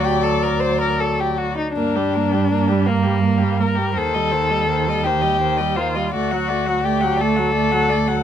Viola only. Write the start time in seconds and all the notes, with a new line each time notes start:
Already playing: F#3
1.77 A#3
1.97 G3
2.16 A#3
2.34 G3
2.52 A#3
2.71 G3
2.89 A#3
3.06 G3
3.24 A#3
3.42 G3
3.60 A#3
3.78 G3
3.96 D#3
4.15 G3
4.33 D#3
4.50 G3
4.69 D#3
4.87 G3
5.05 D#3
5.23 G3
5.41 D#3
5.60 G3
5.78 D#3
5.96 G3
6.14 A3
6.32 F#3
6.50 A3
6.67 F#3
6.84 A3
7.03 F#3
7.20 A3
7.38 F#3
7.56 A3
7.73 F#3
7.90 A3
8.08 F#3